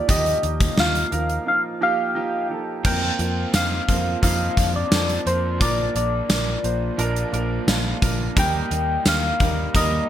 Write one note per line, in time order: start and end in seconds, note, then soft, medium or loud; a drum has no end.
0.00 0.08 F3 medium
0.00 0.08 A#3 medium
0.00 0.08 D#4 medium
0.00 0.78 F4 medium
0.00 0.09 G4 loud
0.00 1.12 A#4 loud
0.08 0.34 D#2 loud
0.08 0.32 F3 loud
0.08 0.32 A#3 medium
0.08 0.32 D#4 medium
0.08 0.32 G4 loud
0.08 0.81 D#5 loud
0.08 kick loud
0.08 closed hi-hat medium
0.26 closed hi-hat soft
0.42 0.68 D#2 medium
0.42 0.67 F3 medium
0.42 0.67 A#3 medium
0.42 0.67 D#4 medium
0.42 0.67 G4 medium
0.42 closed hi-hat medium
0.60 kick medium
0.60 closed hi-hat medium
0.77 1.03 D#2 loud
0.77 1.01 F3 medium
0.77 1.01 A#3 medium
0.77 1.01 D#4 medium
0.77 1.02 F4 medium
0.77 1.48 F5 loud
0.77 snare loud
0.95 closed hi-hat medium
1.11 1.37 D#2 medium
1.11 1.36 F3 medium
1.11 1.36 A#3 medium
1.11 1.36 D#4 medium
1.11 1.36 A#4 medium
1.11 closed hi-hat medium
1.29 closed hi-hat soft
1.46 1.70 F3 medium
1.46 1.70 A#3 medium
1.46 1.70 D#4 medium
1.46 1.71 F4 medium
1.46 1.62 F5 loud
1.81 2.05 F3 medium
1.81 2.05 A#3 medium
1.81 2.05 D#4 medium
1.81 2.05 G4 loud
1.81 2.47 F5 loud
2.15 2.39 F3 medium
2.15 2.39 A#3 medium
2.15 2.39 D#4 medium
2.15 2.40 G4 loud
2.50 2.74 F3 medium
2.50 2.74 A#3 medium
2.50 2.74 D#4 medium
2.50 2.74 A4 medium
2.84 3.10 F2 loud
2.84 3.08 F3 medium
2.84 3.53 F3 medium
2.84 3.08 A#3 medium
2.84 3.09 C4 medium
2.84 3.54 C4 medium
2.84 3.55 F4 medium
2.84 3.09 A#4 loud
2.84 3.50 G5 loud
2.84 kick loud
2.84 crash medium
3.19 3.44 F2 loud
3.19 3.43 F3 medium
3.19 3.43 A#3 medium
3.19 3.43 C4 medium
3.19 3.43 A#4 medium
3.19 closed hi-hat medium
3.53 3.78 F2 medium
3.53 4.21 F3 soft
3.53 3.77 F3 medium
3.53 3.78 A#3 medium
3.53 3.78 C4 medium
3.53 4.22 C4 medium
3.53 3.78 D#4 medium
3.53 4.24 F4 medium
3.53 4.20 F5 loud
3.53 snare loud
3.53 closed hi-hat loud
3.53 tambourine medium
3.88 4.13 F2 loud
3.88 4.12 F3 medium
3.88 4.12 A#3 medium
3.88 4.12 C4 medium
3.88 4.12 A#4 medium
3.88 kick medium
3.88 closed hi-hat medium
4.22 4.48 F2 loud
4.22 5.61 F3 medium
4.22 4.46 F3 medium
4.22 4.46 A#3 medium
4.22 4.47 C4 medium
4.22 5.26 C4 medium
4.22 4.47 D#4 loud
4.22 5.26 F4 medium
4.22 4.71 F5 loud
4.22 kick medium
4.22 closed hi-hat medium
4.56 4.82 F2 loud
4.56 4.80 F3 medium
4.56 4.81 A#3 medium
4.56 4.81 C4 medium
4.56 4.81 D4 medium
4.56 kick medium
4.56 closed hi-hat medium
4.76 5.29 D5 loud
4.91 5.16 F2 loud
4.91 5.15 F3 medium
4.91 5.15 A#3 medium
4.91 5.15 C4 medium
4.91 5.16 A4 medium
4.91 snare loud
4.91 closed hi-hat medium
4.91 tambourine medium
5.09 closed hi-hat soft
5.25 5.62 F2 loud
5.25 5.50 F3 medium
5.25 5.50 A#3 medium
5.25 5.50 C4 medium
5.25 5.62 C4 soft
5.25 5.61 F4 soft
5.25 5.50 A#4 medium
5.25 5.63 C5 medium
5.25 closed hi-hat medium
5.59 5.86 A#1 loud
5.59 6.96 A#2 medium
5.59 5.84 F3 loud
5.59 6.98 F3 medium
5.59 5.84 A#3 medium
5.59 5.84 D4 medium
5.59 5.85 A#4 loud
5.59 5.96 D5 loud
5.59 kick loud
5.59 closed hi-hat medium
5.63 7.01 A#3 medium
5.94 6.20 A#1 medium
5.94 6.18 F3 medium
5.94 6.19 A#3 medium
5.94 6.19 D4 medium
5.94 6.19 A#4 medium
5.94 7.30 D5 medium
5.94 closed hi-hat medium
6.29 6.54 A#1 loud
6.29 6.53 F3 medium
6.29 6.53 A#3 medium
6.29 6.54 D4 medium
6.29 6.54 A#4 medium
6.29 snare loud
6.29 closed hi-hat loud
6.29 tambourine medium
6.63 6.89 A#1 medium
6.63 6.88 F3 medium
6.63 6.88 A#3 medium
6.63 6.88 D4 medium
6.63 6.88 C5 medium
6.63 closed hi-hat medium
6.97 7.23 A#1 loud
6.97 8.36 A#2 medium
6.97 7.22 F3 loud
6.97 8.36 F3 medium
6.97 7.22 A#3 loud
6.97 7.22 D4 loud
6.97 7.23 A#4 loud
6.97 closed hi-hat medium
7.01 8.37 A#3 medium
7.16 closed hi-hat medium
7.32 7.58 A#1 medium
7.32 7.56 F3 medium
7.32 7.57 A#3 medium
7.32 7.57 D4 medium
7.32 7.57 A#4 loud
7.32 closed hi-hat medium
7.67 7.92 A#1 loud
7.67 7.91 F3 medium
7.67 7.91 A#3 medium
7.67 7.92 D4 medium
7.67 7.92 F4 loud
7.67 8.33 D5 medium
7.67 snare loud
7.67 closed hi-hat medium
7.67 tambourine medium
8.02 8.27 A#1 loud
8.02 8.26 F3 medium
8.02 8.26 A#3 medium
8.02 8.26 D4 medium
8.02 8.26 A#4 medium
8.02 kick medium
8.02 closed hi-hat medium
8.36 8.61 D#2 loud
8.36 9.03 D#3 medium
8.36 8.60 G3 loud
8.36 8.60 A#3 medium
8.36 9.06 A#3 medium
8.36 8.61 D#4 medium
8.36 9.06 D#4 medium
8.36 8.61 A#4 loud
8.36 9.10 G5 loud
8.36 kick loud
8.36 closed hi-hat medium
8.70 8.96 D#2 loud
8.70 8.94 G3 medium
8.70 8.95 A#3 medium
8.70 8.95 D#4 medium
8.70 8.95 A#4 medium
8.70 closed hi-hat medium
9.05 9.30 D#2 medium
9.05 9.73 D#3 soft
9.05 9.29 G3 medium
9.05 9.29 A#3 medium
9.05 9.75 A#3 medium
9.05 9.29 D#4 medium
9.05 9.75 D#4 medium
9.05 9.30 A#4 medium
9.05 9.78 F5 medium
9.05 snare loud
9.05 closed hi-hat loud
9.05 tambourine medium
9.40 9.65 D#2 medium
9.40 9.64 G3 medium
9.40 9.64 A#3 medium
9.40 9.64 D#4 medium
9.40 9.64 A#4 medium
9.40 kick medium
9.40 closed hi-hat medium
9.74 9.99 D#2 loud
9.74 10.09 D#3 medium
9.74 9.98 G3 medium
9.74 9.98 A#3 medium
9.74 10.09 A#3 medium
9.74 9.98 D#4 medium
9.74 10.09 D#4 medium
9.74 9.99 A#4 loud
9.74 10.09 D#5 loud
9.74 kick medium
9.74 closed hi-hat medium